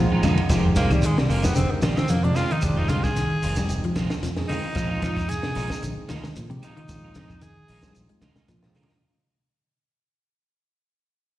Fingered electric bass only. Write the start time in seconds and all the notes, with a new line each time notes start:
0.23 F2
0.38 muted fingered electric bass stroke
0.50 F1
0.76 C2
1.17 muted fingered electric bass stroke
1.30 F1
1.56 F1
1.71 muted fingered electric bass stroke
1.82 A#1
2.10 F2
2.63 F1
2.90 C2
3.31 muted fingered electric bass stroke
3.44 F1
3.69 F1
3.84 muted fingered electric bass stroke
3.96 A#1
4.23 F2
4.76 A#1
5.03 F2
5.44 muted fingered electric bass stroke
5.56 A#1
5.83 A#1
5.98 muted fingered electric bass stroke
6.10 D2
6.37 A#2
6.89 A#1
7.16 F2
7.57 muted fingered electric bass stroke
7.69 A#1
7.96 A#1
8.11 muted fingered electric bass stroke
8.22 D2
8.49 A#2